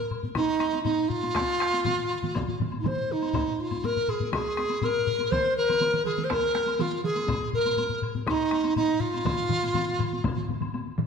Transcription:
0.00 0.11 A#4 medium
0.11 taiko low-mid medium
0.11 high woodblock soft
0.23 taiko low-mid medium
0.23 taiko high soft
0.35 0.82 D#4 medium
0.35 taiko rim medium
0.35 taiko medium
0.35 taiko high medium
0.35 high woodblock soft
0.60 taiko rim medium
0.60 taiko high soft
0.73 taiko high soft
0.73 high woodblock soft
0.84 1.10 D#4 medium
0.84 taiko low-mid medium
0.84 taiko high medium
0.84 high woodblock soft
1.09 2.58 F4 medium
1.09 taiko low-mid medium
1.23 taiko high soft
1.23 high woodblock soft
1.35 taiko rim medium
1.35 taiko loud
1.35 taiko high medium
1.35 high woodblock soft
1.60 taiko rim medium
1.72 taiko high soft
1.72 high woodblock soft
1.85 taiko low-mid medium
1.85 taiko mid medium
1.85 taiko high medium
1.85 high woodblock soft
2.09 high woodblock soft
2.23 taiko low-mid medium
2.23 taiko mid medium
2.23 taiko high soft
2.35 taiko medium
2.35 taiko low-mid medium
2.35 taiko mid medium
2.35 taiko high medium
2.35 high woodblock soft
2.48 taiko low-mid medium
2.48 taiko mid medium
2.60 taiko low-mid medium
2.60 taiko mid medium
2.60 taiko high soft
2.72 taiko high soft
2.72 high woodblock soft
2.79 2.88 D#4 soft
2.84 3.13 C5 medium
2.84 taiko low-mid medium
2.84 taiko mid medium
2.84 taiko high medium
2.84 high woodblock soft
3.12 3.62 D#4 medium
3.22 taiko high soft
3.22 high woodblock soft
3.33 taiko loud
3.33 taiko low-mid medium
3.33 taiko high medium
3.33 high woodblock medium
3.60 3.86 F4 medium
3.71 taiko low-mid medium
3.71 taiko high soft
3.71 high woodblock soft
3.84 4.11 A#4 medium
3.84 taiko low-mid medium
3.84 taiko high medium
3.84 high woodblock soft
3.97 taiko low-mid medium
4.08 4.33 G#4 medium
4.08 taiko low-mid medium
4.08 high woodblock soft
4.20 taiko low-mid medium
4.20 taiko high soft
4.33 4.86 G#4 medium
4.33 taiko rim medium
4.33 taiko loud
4.33 taiko high medium
4.33 high woodblock medium
4.57 taiko rim medium
4.57 taiko high soft
4.70 taiko high medium
4.70 high woodblock soft
4.81 5.33 A#4 medium
4.81 taiko low-mid medium
4.81 taiko high medium
4.81 high woodblock soft
5.07 taiko low-mid medium
5.20 taiko high soft
5.20 high woodblock soft
5.31 5.56 C5 loud
5.31 taiko medium
5.31 taiko mid medium
5.31 taiko high medium
5.31 high woodblock medium
5.57 6.03 A#4 loud
5.69 taiko mid medium
5.69 taiko high soft
5.69 high woodblock soft
5.81 taiko mid medium
5.81 taiko high medium
5.81 high woodblock soft
5.94 taiko mid medium
6.05 6.26 G#4 medium
6.05 taiko mid medium
6.05 high woodblock soft
6.18 taiko mid medium
6.18 taiko high medium
6.24 6.33 C5 medium
6.30 6.82 A#4 medium
6.30 taiko rim medium
6.30 taiko medium
6.30 taiko high medium
6.30 high woodblock medium
6.55 taiko rim medium
6.55 taiko high soft
6.67 taiko high medium
6.67 high woodblock soft
6.79 7.04 F4 medium
6.79 taiko mid loud
6.79 taiko high medium
6.79 high woodblock soft
7.04 7.50 G#4 medium
7.04 taiko mid medium
7.16 taiko high medium
7.16 high woodblock soft
7.28 taiko medium
7.28 taiko low-mid loud
7.28 taiko high medium
7.28 high woodblock medium
7.53 8.00 A#4 medium
7.53 taiko low-mid medium
7.65 taiko high medium
7.65 high woodblock soft
7.77 taiko low-mid medium
7.77 taiko high medium
7.77 high woodblock soft
7.89 taiko low-mid medium
8.02 taiko low-mid medium
8.02 high woodblock soft
8.15 taiko low-mid medium
8.15 taiko high medium
8.27 8.74 D#4 medium
8.27 taiko rim medium
8.27 taiko loud
8.27 taiko high medium
8.27 high woodblock medium
8.51 taiko rim medium
8.51 taiko high soft
8.64 taiko high medium
8.64 high woodblock soft
8.76 9.02 D#4 medium
8.76 taiko low-mid medium
8.76 taiko high medium
8.76 high woodblock soft
9.00 10.49 F4 medium
9.00 taiko low-mid loud
9.14 taiko high medium
9.14 high woodblock soft
9.25 taiko loud
9.25 taiko low-mid loud
9.25 taiko mid loud
9.25 taiko high medium
9.25 high woodblock medium
9.49 taiko low-mid loud
9.49 taiko mid loud
9.63 taiko high medium
9.63 high woodblock soft
9.74 taiko low-mid loud
9.74 taiko mid medium
9.74 taiko high medium
9.74 high woodblock soft
9.99 taiko low-mid loud
9.99 taiko mid medium
9.99 high woodblock soft
10.13 taiko high medium
10.24 taiko loud
10.24 taiko low-mid medium
10.24 taiko mid medium
10.24 taiko high medium
10.24 high woodblock medium
10.37 taiko low-mid medium
10.37 taiko mid medium
10.49 taiko low-mid medium
10.49 taiko mid medium
10.49 taiko high soft
10.61 taiko low-mid medium
10.61 taiko mid medium
10.61 taiko high medium
10.61 high woodblock soft
10.74 taiko high medium
10.74 high woodblock medium
10.98 taiko low-mid loud
10.98 taiko mid loud

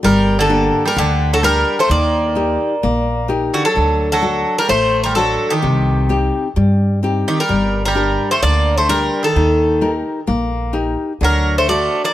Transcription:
0.03 0.69 G1 medium
0.03 0.49 G3 medium
0.03 0.37 G3 medium
0.03 0.37 A#4 medium
0.39 0.82 D3 medium
0.39 0.83 A4 medium
0.49 0.87 A#3 medium
0.49 0.87 D4 soft
0.49 0.87 G4 soft
0.85 0.96 G3 medium
0.85 0.97 A#4 medium
0.96 1.62 D2 medium
0.96 1.42 D3 medium
0.96 1.31 D3 medium
0.96 1.30 G4 medium
1.33 1.43 F#3 medium
1.33 1.44 A4 medium
1.43 1.76 G3 medium
1.43 1.81 D4 medium
1.43 1.81 G4 soft
1.43 1.81 A#4 medium
1.43 1.80 A#4 medium
1.79 1.90 A3 medium
1.79 1.91 C5 medium
1.89 2.55 D#2 loud
1.89 2.35 D#3 medium
1.89 3.26 A#3 medium
1.89 3.26 D5 medium
2.35 2.73 D#4 soft
2.35 2.74 G4 soft
2.35 2.74 A#4 medium
2.83 3.49 A#1 medium
2.83 3.28 A#3 medium
3.28 3.66 D#4 soft
3.28 3.67 G4 soft
3.28 3.67 A#4 medium
3.54 3.64 D3 medium
3.54 3.65 F#4 medium
3.65 4.08 F#3 medium
3.65 4.11 A4 medium
3.76 4.42 D2 medium
3.76 4.21 D3 medium
4.12 4.56 F#3 medium
4.12 4.55 A4 medium
4.22 4.60 D4 soft
4.22 4.60 F#4 soft
4.22 4.60 A4 medium
4.58 4.69 G3 medium
4.58 4.69 A#4 medium
4.68 5.35 A1 medium
4.68 5.14 A3 medium
4.68 5.02 A3 medium
4.68 5.03 C5 medium
5.04 5.16 G3 medium
5.04 5.15 A#4 medium
5.15 5.50 F#3 medium
5.15 5.53 D4 medium
5.15 5.53 F#4 soft
5.15 5.52 A4 medium
5.15 5.54 A4 medium
5.50 6.17 D#3 medium
5.50 6.17 G4 medium
5.62 6.29 C2 medium
5.62 6.08 C3 medium
6.09 6.47 C4 medium
6.09 6.47 D#4 soft
6.09 6.47 G4 medium
6.56 7.22 G2 medium
6.56 7.01 G3 medium
7.03 7.40 C4 soft
7.03 7.41 D#4 soft
7.03 7.41 G4 medium
7.28 7.38 D#3 medium
7.28 7.38 G4 medium
7.40 7.83 G3 medium
7.40 7.82 A#4 medium
7.49 8.15 G1 loud
7.49 7.94 G3 medium
7.86 8.30 G3 medium
7.86 8.31 A#4 medium
7.95 8.33 D4 soft
7.95 8.33 G4 soft
7.95 8.34 A#4 medium
8.31 8.43 A3 medium
8.31 8.42 C5 medium
8.42 9.08 D2 medium
8.42 8.88 D3 medium
8.42 8.76 A#3 medium
8.42 8.75 D5 medium
8.78 8.89 A3 medium
8.78 8.89 C5 medium
8.89 9.22 G3 medium
8.89 9.26 D4 soft
8.89 9.27 G4 soft
8.89 9.22 A#4 medium
8.89 9.27 A#4 medium
9.23 9.90 D#3 medium
9.23 9.90 A4 medium
9.36 10.01 D#2 medium
9.36 9.81 D#3 medium
9.81 10.19 D#4 soft
9.81 10.19 G4 soft
9.81 10.20 A#4 medium
10.27 10.94 A#1 medium
10.27 10.74 A#3 medium
10.73 11.12 D#4 soft
10.73 11.12 G4 soft
10.73 11.12 A#4 soft
11.21 11.87 D2 medium
11.21 11.67 D3 medium
11.21 11.55 F#3 medium
11.21 11.56 A#4 medium
11.58 11.69 A3 medium
11.58 11.69 C5 medium
11.68 12.03 A3 medium
11.68 12.06 D4 soft
11.68 12.06 F#4 soft
11.68 12.06 A4 medium
11.68 12.02 D5 loud
12.04 12.13 A#3 medium
12.04 12.13 D5 medium

